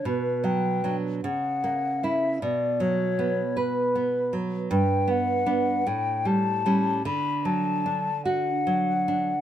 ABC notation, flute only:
X:1
M:6/8
L:1/8
Q:3/8=51
K:D
V:1 name="Flute"
B g z f2 e | d c2 B2 z | g f2 g a2 | b a2 f3 |]